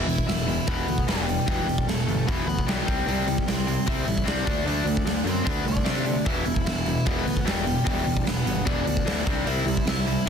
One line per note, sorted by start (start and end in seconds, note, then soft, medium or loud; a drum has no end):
0.00 0.25 E4 medium
0.00 0.26 E5 medium
0.06 0.22 E1 medium
0.06 0.25 E2 medium
0.06 0.25 B2 medium
0.06 open hi-hat medium
0.18 kick medium
0.26 0.58 E1 medium
0.26 0.45 E2 medium
0.26 0.45 B2 medium
0.26 0.65 E4 medium
0.26 0.68 E5 loud
0.26 snare loud
0.26 open hi-hat medium
0.47 0.65 E2 medium
0.47 0.65 B2 medium
0.47 open hi-hat medium
0.67 0.83 E1 medium
0.67 0.85 E2 medium
0.67 0.86 B2 medium
0.67 0.87 E3 medium
0.67 1.05 B3 medium
0.67 1.05 B4 medium
0.67 kick loud
0.67 open hi-hat medium
0.87 1.03 D2 medium
0.87 1.05 E2 medium
0.87 1.05 B2 medium
0.87 open hi-hat medium
0.98 kick medium
1.07 1.38 E1 medium
1.07 1.25 E2 medium
1.07 1.26 B2 medium
1.07 1.27 E3 loud
1.07 1.46 G3 medium
1.07 1.45 G4 medium
1.07 snare loud
1.07 open hi-hat medium
1.26 1.45 E2 medium
1.26 1.45 B2 medium
1.26 open hi-hat medium
1.46 1.63 E1 medium
1.46 1.65 E2 medium
1.46 1.65 B2 medium
1.46 1.66 E3 loud
1.46 1.85 G3 medium
1.46 1.88 G4 medium
1.46 kick loud
1.46 open hi-hat medium
1.66 1.83 E1 medium
1.66 1.85 E2 medium
1.66 1.85 B2 medium
1.66 open hi-hat medium
1.78 kick medium
1.87 2.02 E1 medium
1.87 2.05 E2 medium
1.87 2.05 B2 medium
1.87 2.25 A3 medium
1.87 2.25 A4 medium
1.87 snare loud
1.87 open hi-hat medium
2.06 2.22 G1 medium
2.06 2.25 E2 medium
2.06 2.25 B2 medium
2.06 open hi-hat medium
2.27 2.43 E1 medium
2.27 2.46 E2 medium
2.27 2.46 B2 medium
2.27 2.47 E3 medium
2.27 2.46 B3 medium
2.27 2.45 B4 medium
2.27 kick loud
2.27 open hi-hat medium
2.46 2.62 D2 medium
2.46 2.65 E2 medium
2.46 2.65 B2 medium
2.46 2.66 B3 medium
2.46 2.67 B4 medium
2.46 open hi-hat soft
2.58 kick medium
2.66 2.82 B1 medium
2.66 2.85 E2 medium
2.66 2.85 B2 medium
2.66 2.86 E3 medium
2.66 3.04 G3 medium
2.66 3.05 G4 medium
2.66 snare loud
2.66 open hi-hat medium
2.86 3.03 C2 medium
2.86 3.05 C3 medium
2.86 3.06 G3 loud
2.86 3.06 C4 loud
2.86 kick loud
2.86 open hi-hat medium
3.06 3.22 C2 loud
3.06 3.26 C3 medium
3.06 3.45 G3 medium
3.06 3.26 G3 loud
3.06 3.26 C4 medium
3.06 3.44 G4 medium
3.06 open hi-hat medium
3.27 3.42 C2 medium
3.27 3.45 C3 medium
3.27 3.45 G3 medium
3.27 open hi-hat medium
3.38 kick medium
3.46 3.77 C2 medium
3.46 3.65 C3 medium
3.46 3.65 G3 medium
3.46 3.85 C4 medium
3.46 3.88 C5 medium
3.46 snare loud
3.46 open hi-hat medium
3.67 3.85 C3 medium
3.67 3.85 G3 medium
3.67 open hi-hat medium
3.86 4.03 C2 medium
3.86 4.04 C3 loud
3.86 4.05 G3 medium
3.86 4.06 C4 loud
3.86 4.25 E4 medium
3.86 4.25 E5 loud
3.86 kick loud
3.86 open hi-hat medium
4.05 4.22 A1 medium
4.05 4.23 C3 medium
4.05 4.24 G3 medium
4.05 open hi-hat medium
4.18 kick medium
4.24 4.42 C2 medium
4.24 4.43 C3 medium
4.24 4.44 G3 medium
4.24 4.45 C4 medium
4.24 4.67 D5 loud
4.24 open hi-hat medium
4.28 4.65 D4 medium
4.28 snare loud
4.44 4.62 D2 medium
4.44 4.64 D3 medium
4.44 4.64 A3 medium
4.44 4.65 D4 loud
4.44 kick loud
4.44 open hi-hat medium
4.65 4.81 D2 loud
4.65 4.83 D3 medium
4.65 4.84 A3 medium
4.65 4.85 D4 medium
4.65 5.23 D4 medium
4.65 5.23 D5 medium
4.65 open hi-hat medium
4.85 5.01 D2 medium
4.85 5.04 D3 medium
4.85 5.04 A3 medium
4.85 open hi-hat medium
4.97 kick medium
5.05 5.21 D2 medium
5.05 5.23 D3 medium
5.05 5.23 A3 medium
5.05 snare loud
5.05 open hi-hat medium
5.24 5.41 F#2 medium
5.24 5.42 D3 medium
5.24 5.43 A3 medium
5.24 open hi-hat medium
5.29 5.47 C4 medium
5.29 5.48 C5 medium
5.43 5.62 D2 medium
5.43 5.64 D3 medium
5.43 5.64 A3 medium
5.43 5.64 D4 medium
5.43 kick loud
5.43 open hi-hat medium
5.49 5.66 B3 medium
5.49 5.68 B4 medium
5.65 5.81 C2 medium
5.65 5.83 D3 medium
5.65 5.84 A3 medium
5.65 6.23 D5 medium
5.65 open hi-hat medium
5.69 6.24 D4 medium
5.77 kick medium
5.84 6.16 C3 medium
5.84 6.04 D3 medium
5.84 6.05 A3 medium
5.84 6.05 D4 medium
5.84 snare loud
5.84 open hi-hat medium
6.05 6.24 D3 medium
6.05 6.24 A3 medium
6.05 open hi-hat medium
6.25 6.42 E1 medium
6.25 6.44 E2 medium
6.25 6.44 B2 medium
6.25 6.45 E3 medium
6.25 6.63 E4 medium
6.25 6.66 E5 medium
6.25 kick loud
6.25 open hi-hat medium
6.46 6.61 E1 medium
6.46 6.64 E2 medium
6.46 6.64 B2 medium
6.46 open hi-hat medium
6.56 kick medium
6.65 6.96 E1 medium
6.65 6.84 E2 medium
6.65 6.84 B2 medium
6.65 7.03 E4 medium
6.65 7.07 E5 medium
6.65 snare medium
6.65 open hi-hat medium
6.86 7.04 E2 medium
6.86 7.05 B2 medium
6.86 open hi-hat medium
7.06 7.22 E1 medium
7.06 7.24 E2 medium
7.06 7.25 B2 loud
7.06 7.26 E3 loud
7.06 7.44 B3 medium
7.06 7.48 B4 medium
7.06 kick loud
7.06 open hi-hat medium
7.25 7.41 D2 medium
7.25 7.44 E2 medium
7.25 7.44 B2 medium
7.25 open hi-hat medium
7.37 kick medium
7.45 7.77 E1 medium
7.45 7.64 E2 medium
7.45 7.64 B2 medium
7.45 7.65 E3 medium
7.45 snare loud
7.45 open hi-hat medium
7.49 7.85 G3 medium
7.49 7.85 G4 medium
7.65 7.83 E2 medium
7.65 7.84 B2 medium
7.65 open hi-hat medium
7.84 8.02 E1 loud
7.84 8.04 E2 medium
7.84 8.04 B2 medium
7.84 8.05 E3 loud
7.84 kick loud
7.84 open hi-hat medium
7.88 8.25 G3 medium
7.88 8.27 G4 medium
8.05 8.22 E1 medium
8.05 8.23 E2 medium
8.05 8.23 B2 medium
8.05 open hi-hat medium
8.17 kick medium
8.24 8.41 E1 medium
8.24 8.43 E2 medium
8.24 8.43 B2 medium
8.24 8.64 B3 medium
8.24 snare medium
8.24 open hi-hat medium
8.29 8.66 B4 medium
8.45 8.62 G1 loud
8.45 8.64 E2 medium
8.45 8.64 B2 medium
8.45 open hi-hat medium
8.65 8.82 E1 medium
8.65 8.84 E2 medium
8.65 8.85 B2 medium
8.65 8.85 E3 loud
8.65 8.84 D4 medium
8.65 8.85 D5 medium
8.65 kick loud
8.65 open hi-hat medium
8.85 9.01 D2 medium
8.85 9.04 E2 medium
8.85 9.04 B2 medium
8.85 9.42 D4 medium
8.85 9.46 D5 medium
8.85 open hi-hat medium
8.97 kick medium
9.05 9.22 D2 medium
9.05 9.24 E2 medium
9.05 9.25 B2 medium
9.05 9.25 E3 loud
9.05 snare loud
9.05 open hi-hat medium
9.26 9.42 C2 medium
9.26 9.45 C3 medium
9.26 9.45 G3 medium
9.26 9.45 C4 medium
9.26 kick loud
9.26 open hi-hat medium
9.45 9.61 C2 medium
9.45 9.65 C3 medium
9.45 9.65 G3 medium
9.45 9.66 C4 medium
9.45 9.83 E4 medium
9.45 9.84 E5 medium
9.45 open hi-hat medium
9.65 9.81 C2 medium
9.65 9.84 C3 medium
9.65 9.85 G3 medium
9.65 open hi-hat medium
9.77 kick medium
9.86 10.17 C2 medium
9.86 10.05 C3 medium
9.86 10.05 G3 medium
9.86 10.24 E4 medium
9.86 10.25 E5 medium
9.86 snare loud
9.86 open hi-hat medium
10.07 10.25 C3 medium
10.07 10.25 G3 medium
10.07 open hi-hat medium
10.26 10.29 C3 medium